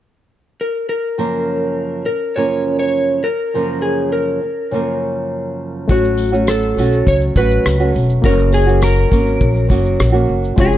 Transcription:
0.61 A#4
0.89 A#4
1.18 F#2 C#3 F3 A#3 C#4 A#4
2.06 F#2 C#3 A#4
2.36 F#2 C#3 F3 A#3 C#4 A#4 C#5
2.79 C#5
3.24 F#2 F3 A#4
3.54 F#2 C#3 F3 A#3 C#4 A#4
3.82 G#4
4.13 A#4
4.43 C#3
4.71 F#2 C#3 F3 A#3 C#4 A#4
5.88 A1 F#3 A3 C#4 F#4, kick, tambourine, shaker
5.92 C#5
6.04 shaker
6.18 tambourine, shaker
6.32 F#3 A3 C#4 F#4, shaker
6.47 A4, cross-stick, tambourine, shaker
6.63 shaker
6.77 B1 F#3 A3 C#4 F#4, tambourine
6.92 shaker
7.07 C#2 C#5, kick, tambourine, shaker
7.21 shaker
7.35 A1 F#3 A3 C#4 F#4 B4, kick, tambourine, shaker
7.51 shaker
7.66 C#2, cross-stick, tambourine, shaker
7.80 F#3 A3 C#4 F#4, shaker
7.94 E1, tambourine, shaker
8.10 shaker
8.22 F#1 F#3 A#3 C#4 F#4 A#4, kick, tambourine, shaker
8.26 C#5
8.39 shaker
8.52 G#4, tambourine, shaker
8.66 F#3 A#3 C#4 F#4, shaker
8.82 A#4, cross-stick, tambourine, shaker
8.97 shaker
9.10 G#1 F#3 A#3 C#4 F#4, kick, tambourine, shaker
9.27 shaker
9.41 A#1, kick, shaker
9.56 shaker
9.68 F#1 F#3 A#3 C#4 F#4, kick, tambourine
9.86 shaker
10.00 A#1, cross-stick, tambourine, shaker
10.12 F#3 A#3 C#4 F#4, shaker
10.29 F#1
10.44 shaker
10.56 F1 F3 G#3 C#4 F4 G#4, kick, tambourine, shaker
10.60 G#4 C#5
10.73 shaker

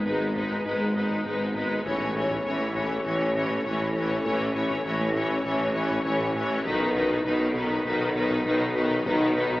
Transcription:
Already playing: G#1 G#3 B3 D#4 G#4
0.05 G#1 G#2 G#3 D#4 B4
0.21 G#3
0.36 G#2 G#3 D#4 B4, taiko
0.51 G#2
0.66 G#1 G#2 G#3 D#4 B4
0.81 G#2
0.96 G#2 G#3 D#4 B4
1.11 G#2
1.26 G#1 G#2 G#3 D#4 B4
1.40 G#2
1.55 G#2 G#3 D#4 B4
1.70 G#2
1.85 A1 A2 E3 C#4 E4 A4 C#5, taiko
2.00 A2
2.15 A2 E3 C#4 C#5
2.30 A2, taiko
2.45 A1 A2 E3 C#4 C#5
2.60 A3
2.75 A2 E3 C#4 C#5, taiko
2.90 A2
3.05 A1 A2 E3 C#4 C#5
3.21 A2
3.36 A2 E3 C#4 C#5
3.50 A2
3.65 A1 A2 E3 C#4 C#5
3.81 A2
3.96 A2 E3 C#4 C#5
4.11 A2
4.25 A1 A2 E3 C#4 C#5, taiko
4.41 A2
4.55 A2 E3 C#4 C#5
4.70 A2, taiko
4.85 A1 A2 E3 C#4 C#5
5.00 A3
5.16 A2 E3 C#4 C#5, taiko
5.31 A2
5.45 A1 A2 E3 C#4 C#5
5.60 A2
5.75 A2 E3 C#4 C#5
5.90 A2
6.04 A1 A2 E3 C#4 C#5
6.20 A2
6.35 A2 E3 C#4 C#5
6.50 A2
6.65 B1 B2 D#3 F#3 B3 D#4 B4, taiko
6.80 B2
6.95 B2 D#3 D#4 B4
7.10 B2, taiko
7.25 B1 B2 D#3 D#4 B4
7.40 B3
7.54 B2 D#3 D#4 B4, taiko
7.70 B2
7.85 B1 B2 D#3 D#4 B4
8.00 B2
8.15 B2 D#3 D#4 B4
8.30 B2
8.45 B1 B2 D#3 D#4 B4
8.61 B2
8.75 B2 D#3 D#4 B4
8.91 B2
9.05 B1 B2 D#3 D#4 B4, taiko
9.21 B2
9.35 B2 D#3 D#4 B4
9.51 B2, taiko

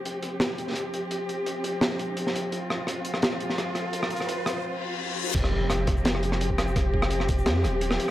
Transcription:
Already playing: F1 F3 C4 G4, riser
0.05 closed hi-hat
0.22 F1, closed hi-hat
0.40 snare, closed hi-hat
0.58 closed hi-hat
0.67 snare
0.69 snare
0.72 snare
0.74 snare, closed hi-hat
0.94 closed hi-hat
1.11 closed hi-hat
1.29 closed hi-hat
1.46 closed hi-hat
1.64 F1, closed hi-hat
1.81 F2, snare, closed hi-hat
1.99 D#1, closed hi-hat
2.17 closed hi-hat
2.27 snare
2.35 closed hi-hat
2.52 F1 F4, closed hi-hat
2.70 cross-stick
2.87 cross-stick, closed hi-hat
3.05 F1, closed hi-hat
3.14 cross-stick
3.22 snare, closed hi-hat
3.32 cross-stick
3.40 closed hi-hat
3.50 snare
3.58 cross-stick, closed hi-hat
3.75 cross-stick, closed hi-hat
3.93 closed hi-hat
4.03 cross-stick
4.10 closed hi-hat
4.16 closed hi-hat
4.20 cross-stick, closed hi-hat
4.29 closed hi-hat
4.46 F1, cross-stick, closed hi-hat
4.64 reverse cymbal
5.34 F1 F3 C4 G4, kick, closed hi-hat, crash, impact
5.44 cross-stick
5.70 cross-stick, closed hi-hat
5.87 F1, kick, cross-stick, closed hi-hat
5.97 shaker
6.05 snare, closed hi-hat
6.15 cross-stick
6.23 closed hi-hat
6.32 cross-stick, snare
6.41 closed hi-hat
6.50 kick
6.58 cross-stick, closed hi-hat
6.67 shaker
6.76 kick, cross-stick, closed hi-hat
6.94 kick
7.02 cross-stick
7.10 closed hi-hat
7.20 cross-stick
7.29 F1, kick, closed hi-hat
7.38 shaker
7.46 F2, cross-stick, snare, closed hi-hat
7.64 D#1, cross-stick, closed hi-hat, shaker
7.81 closed hi-hat
7.91 cross-stick, snare
8.00 closed hi-hat

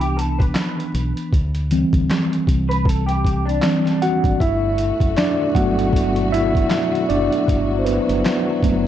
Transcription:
Already playing: C2 E3 B3 D4
0.01 G4, closed hi-hat
0.17 A4, closed hi-hat
0.38 B4, kick, closed hi-hat
0.55 snare, clap, closed hi-hat
0.80 closed hi-hat
0.94 B1, closed hi-hat
1.17 closed hi-hat
1.33 D2, kick, closed hi-hat
1.55 closed hi-hat
1.71 E3 G3 C4, closed hi-hat
1.93 D2, kick, closed hi-hat
2.10 snare, clap, closed hi-hat
2.33 closed hi-hat
2.47 C2, kick, closed hi-hat
2.69 B4, closed hi-hat
2.84 A4, kick
2.89 closed hi-hat
3.06 G4, closed hi-hat
3.25 kick, closed hi-hat
3.45 D4, closed hi-hat
3.62 E3 G3 C4, snare, clap, closed hi-hat
3.85 snare, closed hi-hat
4.02 F#4 F#5, closed hi-hat
4.24 G#1, kick, closed hi-hat
4.39 G1 B2 A3 E4 F#4 E5, kick, closed hi-hat
4.78 closed hi-hat
5.00 F#1, kick, closed hi-hat
5.17 D4 D5, snare, clap, closed hi-hat
5.55 G1 F#3 A3 B3 F#4 F#5, kick, closed hi-hat
5.79 closed hi-hat
5.93 kick, closed hi-hat
6.16 closed hi-hat
6.32 E4 E5, closed hi-hat
6.55 kick, closed hi-hat
6.70 snare, clap, closed hi-hat
6.95 closed hi-hat
7.09 F#1 D4 D5, closed hi-hat
7.32 closed hi-hat
7.48 G1 F#3, kick, closed hi-hat
7.79 C5
7.85 B3 B4, closed hi-hat
8.09 G1, closed hi-hat
8.25 snare, clap, closed hi-hat
8.63 F#1 F#3 A3 B3, kick, closed hi-hat

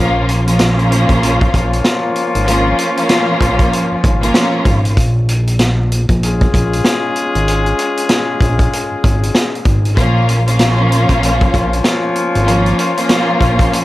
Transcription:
Already playing: A#1 F3 A#3
0.00 C#4 F4
0.29 closed hi-hat
0.45 F3 A#3 C#4 F4, closed hi-hat
0.59 snare, closed hi-hat
0.79 closed hi-hat
0.92 closed hi-hat
1.09 A#1, kick, closed hi-hat
1.23 F3 A#3 C#4 F4, closed hi-hat
1.41 kick, closed hi-hat
1.54 A#1, kick, closed hi-hat
1.73 closed hi-hat
1.84 snare, closed hi-hat
2.16 closed hi-hat
2.35 G#1, closed hi-hat
2.45 F3 A#3 C#4 F4, closed hi-hat
2.79 closed hi-hat
2.95 F3 A#3 C#4 F4, closed hi-hat
3.09 snare, closed hi-hat
3.41 A#1, kick, closed hi-hat
3.59 kick, closed hi-hat
3.73 closed hi-hat
3.92 G#1
4.04 G#1, kick, closed hi-hat
4.21 F3 A#3 C#4 F4, closed hi-hat
4.34 snare, closed hi-hat
4.65 G#1, kick, closed hi-hat
4.85 closed hi-hat
4.97 A#1, kick, closed hi-hat
5.29 closed hi-hat
5.47 closed hi-hat
5.59 snare, closed hi-hat
5.92 closed hi-hat
6.09 A#1, kick, closed hi-hat
6.23 G#3 C#4 F4 G#4, closed hi-hat
6.41 kick, closed hi-hat
6.54 A#1, kick, closed hi-hat
6.73 closed hi-hat
6.84 snare, closed hi-hat
7.16 closed hi-hat
7.35 G#1, closed hi-hat
7.48 closed hi-hat
7.66 closed hi-hat
7.79 closed hi-hat
7.97 closed hi-hat
8.09 snare, closed hi-hat
8.41 A#1, kick, closed hi-hat
8.59 kick, closed hi-hat
8.73 closed hi-hat
8.91 G#1
9.04 G#1, kick, closed hi-hat
9.23 closed hi-hat
9.35 snare, closed hi-hat
9.55 closed hi-hat
9.65 G#1, kick, closed hi-hat
9.85 closed hi-hat
9.96 A#1 F3 A#3 C#4 F4, kick, closed hi-hat
10.29 closed hi-hat
10.45 F3 A#3 C#4 F4, closed hi-hat
10.59 snare, closed hi-hat
10.92 closed hi-hat
11.09 A#1, kick, closed hi-hat
11.23 F3 A#3 C#4 F4, closed hi-hat
11.41 kick, closed hi-hat
11.54 A#1, kick, closed hi-hat
11.73 closed hi-hat
11.84 snare, closed hi-hat
12.16 closed hi-hat
12.35 G#1, closed hi-hat
12.45 F3 A#3 C#4 F4, closed hi-hat
12.66 closed hi-hat
12.79 closed hi-hat
12.95 F3 A#3 C#4 F4, closed hi-hat
13.09 snare, closed hi-hat
13.41 A#1, kick, closed hi-hat
13.59 kick, closed hi-hat
13.73 closed hi-hat

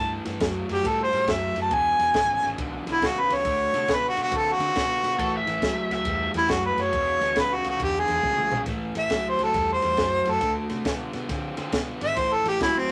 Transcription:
Already playing: G2 A2 E3 A5
0.25 G2 A2 E3, snare, ride
0.40 F#2 A2 F#3, kick, snare, ride
0.68 F#2 A2 F#3, snare, ride
0.73 G4
0.83 A2 G3, kick, snare, ride
0.87 A4
1.03 C5
1.13 A2 G3, snare, ride
1.27 F#2 A2 F#3 E5, kick, snare, ride
1.55 F#2 A2 F#3, snare, ride
1.62 A5
1.71 E1 E2 B2 G#5, kick, ride
1.98 E1 E2 B2, snare, ride
2.14 G#1 E2 C#3, kick, snare, ride
2.43 G#1 E2 C#3, snare, ride
2.58 B1 E2 D3, kick, ride
2.86 B1 E2 D3, snare, ride
2.92 E4
3.02 C#2 E2 C#3, kick, snare, ride
3.06 F#4
3.20 B4
3.29 C#2 E2 C#3, snare, ride
3.34 C#5
3.45 D2 D3 A3, kick, ride
3.74 C3 D3 A3, snare, ride
3.88 B2 D3 B3, kick, snare, ride
3.93 B4
4.09 F#4
4.17 B2 D3 B3, snare, ride
4.22 F#4
4.31 D3 C4, kick, ride
4.36 A4
4.52 F#4
4.59 D3 C4, snare, ride
4.75 B2 D3 B3, kick, snare, ride
5.03 B2 D3 B3, snare, ride
5.18 A1 A2 E3 A4, kick, ride
5.37 E5
5.47 A1 A2 E3, snare, ride
5.62 C#2 A2 F#3, kick, snare, ride
5.90 C#2 A2 F#3 E5, snare, ride
6.05 E2 A2 G3, kick, ride
6.34 E2 A2 G3 E4, snare, ride
6.49 F#2 A2 F#3 F#4, kick, snare, ride
6.66 B4
6.76 F#2 A2 F#3, snare, ride
6.81 C#5
6.92 E1 E2 B2, kick, ride
7.20 D2 E2 B2, snare, ride
7.36 C#2 E2 C#3 B4, kick, snare, ride
7.54 F#4
7.64 C#2 E2 C#3, snare, ride
7.69 F#4
7.79 E2 D3 G4, kick, ride
7.99 G#4
8.08 E2 D3, snare, ride
8.23 C#2 E2 C#3, kick, high tom
8.37 mid tom
8.51 B1 E2 C#3, floor tom
8.66 A1 A2 E3, kick, snare, ride
8.95 A1 A2 E3 E5, snare, ride
9.10 C#2 A2 F#3, kick, snare, ride
9.29 C5
9.39 C#2 A2 F#3, snare, ride
9.44 A4
9.54 E2 A2 G3, kick, snare, ride
9.73 C5
9.82 E2 A2 G3, snare, ride
9.97 F#2 A2 F#3, kick, snare, ride
10.25 F#2 A2 F#3, snare, ride
10.30 A4
10.41 D2 D3 A3, kick, snare, ride
10.69 C3 D3 A3, snare, ride
10.85 B2 D3 B3, kick, snare, ride
11.13 B2 D3 B3, snare, ride
11.29 D3 C4, kick, snare, ride
11.57 D3 C4, snare, ride
11.72 B2 D3 B3, kick, snare, ride
12.01 G#1 D3 B3 E5, snare, ride
12.17 A1 A2 E3 C5, kick, snare, ride
12.33 A4
12.44 A1 A2 E3 G4, snare, ride
12.60 C#2 A2 F#3 E4, kick, snare, ride
12.79 C4

